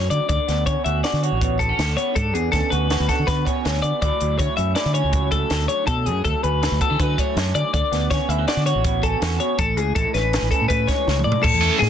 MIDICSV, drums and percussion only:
0, 0, Header, 1, 2, 480
1, 0, Start_track
1, 0, Tempo, 371287
1, 380, Time_signature, 5, 2, 24, 8
1, 15378, End_track
2, 0, Start_track
2, 0, Title_t, "Drums"
2, 138, Note_on_c, 9, 42, 51
2, 268, Note_off_c, 9, 42, 0
2, 378, Note_on_c, 9, 42, 71
2, 380, Note_on_c, 9, 36, 96
2, 508, Note_off_c, 9, 42, 0
2, 509, Note_off_c, 9, 36, 0
2, 628, Note_on_c, 9, 42, 54
2, 636, Note_on_c, 9, 38, 26
2, 757, Note_off_c, 9, 42, 0
2, 765, Note_off_c, 9, 38, 0
2, 863, Note_on_c, 9, 36, 86
2, 866, Note_on_c, 9, 42, 70
2, 992, Note_off_c, 9, 36, 0
2, 995, Note_off_c, 9, 42, 0
2, 1108, Note_on_c, 9, 42, 56
2, 1237, Note_off_c, 9, 42, 0
2, 1346, Note_on_c, 9, 42, 73
2, 1354, Note_on_c, 9, 38, 85
2, 1475, Note_off_c, 9, 42, 0
2, 1483, Note_off_c, 9, 38, 0
2, 1595, Note_on_c, 9, 42, 60
2, 1725, Note_off_c, 9, 42, 0
2, 1829, Note_on_c, 9, 36, 90
2, 1836, Note_on_c, 9, 42, 80
2, 1959, Note_off_c, 9, 36, 0
2, 1965, Note_off_c, 9, 42, 0
2, 2071, Note_on_c, 9, 36, 61
2, 2081, Note_on_c, 9, 42, 54
2, 2200, Note_off_c, 9, 36, 0
2, 2211, Note_off_c, 9, 42, 0
2, 2312, Note_on_c, 9, 42, 72
2, 2320, Note_on_c, 9, 38, 84
2, 2442, Note_off_c, 9, 42, 0
2, 2449, Note_off_c, 9, 38, 0
2, 2558, Note_on_c, 9, 42, 52
2, 2687, Note_off_c, 9, 42, 0
2, 2793, Note_on_c, 9, 36, 94
2, 2793, Note_on_c, 9, 42, 77
2, 2922, Note_off_c, 9, 36, 0
2, 2923, Note_off_c, 9, 42, 0
2, 3037, Note_on_c, 9, 42, 51
2, 3166, Note_off_c, 9, 42, 0
2, 3272, Note_on_c, 9, 42, 63
2, 3273, Note_on_c, 9, 36, 89
2, 3280, Note_on_c, 9, 38, 30
2, 3401, Note_off_c, 9, 42, 0
2, 3402, Note_off_c, 9, 36, 0
2, 3409, Note_off_c, 9, 38, 0
2, 3515, Note_on_c, 9, 42, 51
2, 3644, Note_off_c, 9, 42, 0
2, 3754, Note_on_c, 9, 42, 63
2, 3761, Note_on_c, 9, 38, 91
2, 3883, Note_off_c, 9, 42, 0
2, 3891, Note_off_c, 9, 38, 0
2, 3994, Note_on_c, 9, 42, 53
2, 3995, Note_on_c, 9, 36, 61
2, 4002, Note_on_c, 9, 38, 30
2, 4124, Note_off_c, 9, 36, 0
2, 4124, Note_off_c, 9, 42, 0
2, 4131, Note_off_c, 9, 38, 0
2, 4237, Note_on_c, 9, 36, 94
2, 4239, Note_on_c, 9, 42, 74
2, 4247, Note_on_c, 9, 38, 30
2, 4366, Note_off_c, 9, 36, 0
2, 4368, Note_off_c, 9, 42, 0
2, 4376, Note_off_c, 9, 38, 0
2, 4480, Note_on_c, 9, 36, 66
2, 4488, Note_on_c, 9, 42, 53
2, 4609, Note_off_c, 9, 36, 0
2, 4618, Note_off_c, 9, 42, 0
2, 4721, Note_on_c, 9, 42, 60
2, 4729, Note_on_c, 9, 38, 94
2, 4850, Note_off_c, 9, 42, 0
2, 4858, Note_off_c, 9, 38, 0
2, 4959, Note_on_c, 9, 42, 53
2, 5088, Note_off_c, 9, 42, 0
2, 5199, Note_on_c, 9, 42, 71
2, 5200, Note_on_c, 9, 36, 95
2, 5328, Note_off_c, 9, 42, 0
2, 5329, Note_off_c, 9, 36, 0
2, 5436, Note_on_c, 9, 42, 53
2, 5566, Note_off_c, 9, 42, 0
2, 5680, Note_on_c, 9, 36, 88
2, 5683, Note_on_c, 9, 42, 72
2, 5809, Note_off_c, 9, 36, 0
2, 5813, Note_off_c, 9, 42, 0
2, 5920, Note_on_c, 9, 42, 55
2, 6049, Note_off_c, 9, 42, 0
2, 6148, Note_on_c, 9, 42, 70
2, 6156, Note_on_c, 9, 38, 94
2, 6278, Note_off_c, 9, 42, 0
2, 6285, Note_off_c, 9, 38, 0
2, 6394, Note_on_c, 9, 42, 54
2, 6523, Note_off_c, 9, 42, 0
2, 6630, Note_on_c, 9, 42, 74
2, 6636, Note_on_c, 9, 36, 101
2, 6759, Note_off_c, 9, 42, 0
2, 6765, Note_off_c, 9, 36, 0
2, 6872, Note_on_c, 9, 42, 51
2, 6876, Note_on_c, 9, 36, 67
2, 7002, Note_off_c, 9, 42, 0
2, 7005, Note_off_c, 9, 36, 0
2, 7112, Note_on_c, 9, 42, 67
2, 7119, Note_on_c, 9, 38, 83
2, 7241, Note_off_c, 9, 42, 0
2, 7249, Note_off_c, 9, 38, 0
2, 7356, Note_on_c, 9, 42, 55
2, 7485, Note_off_c, 9, 42, 0
2, 7594, Note_on_c, 9, 42, 66
2, 7596, Note_on_c, 9, 36, 92
2, 7723, Note_off_c, 9, 42, 0
2, 7725, Note_off_c, 9, 36, 0
2, 7837, Note_on_c, 9, 42, 50
2, 7966, Note_off_c, 9, 42, 0
2, 8081, Note_on_c, 9, 36, 89
2, 8082, Note_on_c, 9, 42, 65
2, 8210, Note_off_c, 9, 36, 0
2, 8211, Note_off_c, 9, 42, 0
2, 8325, Note_on_c, 9, 42, 49
2, 8454, Note_off_c, 9, 42, 0
2, 8569, Note_on_c, 9, 42, 74
2, 8577, Note_on_c, 9, 38, 95
2, 8698, Note_off_c, 9, 42, 0
2, 8706, Note_off_c, 9, 38, 0
2, 8802, Note_on_c, 9, 42, 55
2, 8803, Note_on_c, 9, 36, 69
2, 8931, Note_off_c, 9, 42, 0
2, 8932, Note_off_c, 9, 36, 0
2, 9043, Note_on_c, 9, 36, 101
2, 9045, Note_on_c, 9, 42, 69
2, 9173, Note_off_c, 9, 36, 0
2, 9174, Note_off_c, 9, 42, 0
2, 9285, Note_on_c, 9, 36, 72
2, 9290, Note_on_c, 9, 42, 57
2, 9414, Note_off_c, 9, 36, 0
2, 9419, Note_off_c, 9, 42, 0
2, 9527, Note_on_c, 9, 42, 71
2, 9534, Note_on_c, 9, 38, 95
2, 9656, Note_off_c, 9, 42, 0
2, 9664, Note_off_c, 9, 38, 0
2, 9764, Note_on_c, 9, 42, 62
2, 9893, Note_off_c, 9, 42, 0
2, 10004, Note_on_c, 9, 36, 98
2, 10009, Note_on_c, 9, 42, 76
2, 10133, Note_off_c, 9, 36, 0
2, 10139, Note_off_c, 9, 42, 0
2, 10247, Note_on_c, 9, 42, 53
2, 10255, Note_on_c, 9, 38, 31
2, 10377, Note_off_c, 9, 42, 0
2, 10384, Note_off_c, 9, 38, 0
2, 10483, Note_on_c, 9, 36, 88
2, 10488, Note_on_c, 9, 42, 78
2, 10496, Note_on_c, 9, 38, 30
2, 10613, Note_off_c, 9, 36, 0
2, 10617, Note_off_c, 9, 42, 0
2, 10625, Note_off_c, 9, 38, 0
2, 10728, Note_on_c, 9, 42, 58
2, 10857, Note_off_c, 9, 42, 0
2, 10960, Note_on_c, 9, 42, 70
2, 10968, Note_on_c, 9, 38, 93
2, 11090, Note_off_c, 9, 42, 0
2, 11098, Note_off_c, 9, 38, 0
2, 11204, Note_on_c, 9, 42, 58
2, 11333, Note_off_c, 9, 42, 0
2, 11434, Note_on_c, 9, 42, 76
2, 11437, Note_on_c, 9, 36, 100
2, 11563, Note_off_c, 9, 42, 0
2, 11566, Note_off_c, 9, 36, 0
2, 11676, Note_on_c, 9, 42, 54
2, 11677, Note_on_c, 9, 36, 63
2, 11805, Note_off_c, 9, 42, 0
2, 11806, Note_off_c, 9, 36, 0
2, 11919, Note_on_c, 9, 42, 65
2, 11926, Note_on_c, 9, 38, 97
2, 12048, Note_off_c, 9, 42, 0
2, 12056, Note_off_c, 9, 38, 0
2, 12152, Note_on_c, 9, 42, 50
2, 12281, Note_off_c, 9, 42, 0
2, 12393, Note_on_c, 9, 42, 70
2, 12394, Note_on_c, 9, 36, 99
2, 12523, Note_off_c, 9, 36, 0
2, 12523, Note_off_c, 9, 42, 0
2, 12635, Note_on_c, 9, 42, 51
2, 12764, Note_off_c, 9, 42, 0
2, 12874, Note_on_c, 9, 42, 64
2, 12875, Note_on_c, 9, 36, 90
2, 13004, Note_off_c, 9, 36, 0
2, 13004, Note_off_c, 9, 42, 0
2, 13115, Note_on_c, 9, 42, 58
2, 13123, Note_on_c, 9, 38, 29
2, 13244, Note_off_c, 9, 42, 0
2, 13252, Note_off_c, 9, 38, 0
2, 13359, Note_on_c, 9, 42, 79
2, 13367, Note_on_c, 9, 38, 96
2, 13489, Note_off_c, 9, 42, 0
2, 13496, Note_off_c, 9, 38, 0
2, 13596, Note_on_c, 9, 36, 60
2, 13601, Note_on_c, 9, 42, 56
2, 13725, Note_off_c, 9, 36, 0
2, 13731, Note_off_c, 9, 42, 0
2, 13832, Note_on_c, 9, 42, 82
2, 13833, Note_on_c, 9, 36, 93
2, 13961, Note_off_c, 9, 42, 0
2, 13962, Note_off_c, 9, 36, 0
2, 14071, Note_on_c, 9, 36, 74
2, 14072, Note_on_c, 9, 42, 61
2, 14080, Note_on_c, 9, 38, 32
2, 14201, Note_off_c, 9, 36, 0
2, 14201, Note_off_c, 9, 42, 0
2, 14209, Note_off_c, 9, 38, 0
2, 14322, Note_on_c, 9, 38, 50
2, 14451, Note_off_c, 9, 38, 0
2, 14471, Note_on_c, 9, 47, 57
2, 14600, Note_off_c, 9, 47, 0
2, 14632, Note_on_c, 9, 43, 86
2, 14761, Note_off_c, 9, 43, 0
2, 14791, Note_on_c, 9, 36, 113
2, 14796, Note_on_c, 9, 49, 122
2, 14921, Note_off_c, 9, 36, 0
2, 14926, Note_off_c, 9, 49, 0
2, 15038, Note_on_c, 9, 51, 69
2, 15167, Note_off_c, 9, 51, 0
2, 15277, Note_on_c, 9, 51, 95
2, 15284, Note_on_c, 9, 38, 36
2, 15378, Note_off_c, 9, 38, 0
2, 15378, Note_off_c, 9, 51, 0
2, 15378, End_track
0, 0, End_of_file